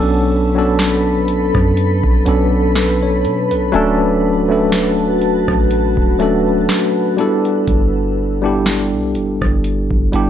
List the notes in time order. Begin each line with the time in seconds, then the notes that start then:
Already playing: B1 F#3 B3 C#4 D4 A4 B4 B5
0.55 F#3 B3 C#4 D4 A4
0.79 snare, closed hi-hat
1.28 closed hi-hat
1.55 F#2, kick, cross-stick
1.77 closed hi-hat
2.04 B1, kick
2.25 B1 F#3 B3 C#4 D4 A4, closed hi-hat
2.75 A4, snare, closed hi-hat
3.03 C#5
3.25 B2, closed hi-hat
3.51 B1 B4, closed hi-hat
3.72 D1 F#3 A3 C#4 D4 F#4 A4 A5, closed hi-hat
4.48 F#3 A3 C#4 D4 A4
4.72 snare, closed hi-hat
5.21 closed hi-hat
5.48 A1, kick, cross-stick
5.71 closed hi-hat
5.97 D1, kick
6.19 F#3 A3 C#4 D4 A4, closed hi-hat
6.69 snare, closed hi-hat
7.17 G3 B3 D4 E4 A4, closed hi-hat
7.45 closed hi-hat
7.67 G1, kick, closed hi-hat
8.42 G3 B3 D4 E4 G4
8.66 snare, closed hi-hat
8.92 B1
9.15 G1, closed hi-hat
9.42 G1, kick, cross-stick
9.64 closed hi-hat
9.91 G1, kick
10.12 G1 G3 B3 D4 E4 G4, closed hi-hat